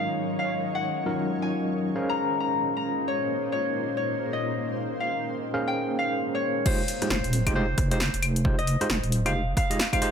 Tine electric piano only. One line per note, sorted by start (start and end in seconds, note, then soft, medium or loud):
0.00 1.04 F#3 medium
0.00 1.04 C#4 medium
0.00 1.04 D#4 medium
0.00 1.04 F4 medium
0.00 1.04 A#4 medium
1.06 1.94 F#3 medium
1.06 1.94 C#4 medium
1.06 1.94 D#4 medium
1.06 1.94 F4 medium
1.06 1.94 A#4 medium
1.96 5.52 C#4 medium
1.96 5.52 G#4 medium
1.96 5.52 A#4 medium
1.96 5.52 C5 medium
1.96 5.52 F5 medium
5.54 6.64 C#4 medium
5.54 6.64 G#4 medium
5.54 6.64 A#4 medium
5.54 6.64 C5 medium
5.54 6.64 F5 medium
6.66 6.81 G#3 medium
6.66 6.81 D#4 medium
6.66 6.81 F4 medium
6.66 6.81 G4 medium
6.66 6.81 C5 medium
7.02 7.08 G#3 medium
7.02 7.08 D#4 medium
7.02 7.08 F4 medium
7.02 7.08 G4 medium
7.02 7.08 C5 medium
7.47 7.53 G#3 medium
7.47 7.53 D#4 medium
7.47 7.53 F4 medium
7.47 7.53 G4 medium
7.47 7.53 C5 loud
7.55 7.65 G#3 medium
7.55 7.65 D#4 medium
7.55 7.65 F4 medium
7.55 7.65 G4 medium
7.55 7.65 C5 medium
7.91 7.98 G#3 loud
7.91 7.98 D#4 medium
7.91 7.98 F4 medium
7.91 7.98 G4 medium
7.91 7.98 C5 loud
8.45 8.55 G#3 medium
8.45 8.55 D#4 medium
8.45 8.55 F4 medium
8.45 8.55 G4 medium
8.45 8.55 C5 loud
8.81 8.87 G#3 medium
8.81 8.87 D#4 medium
8.81 8.87 F4 medium
8.81 8.87 G4 medium
8.81 8.87 C5 loud
9.26 9.32 G#3 loud
9.26 9.32 D#4 medium
9.26 9.32 F4 medium
9.26 9.32 G4 medium
9.26 9.32 C5 loud
9.70 9.77 G#3 medium
9.70 9.77 D#4 medium
9.70 9.77 F4 medium
9.70 9.77 G4 medium
9.70 9.77 D#5 loud
9.93 10.00 G#3 medium
9.93 10.00 D#4 medium
9.93 10.00 F4 medium
9.93 10.00 G4 medium
9.93 10.00 C5 medium
10.02 10.11 G#3 medium
10.02 10.11 D#4 medium
10.02 10.11 F4 medium
10.02 10.11 G4 medium
10.02 10.11 C5 loud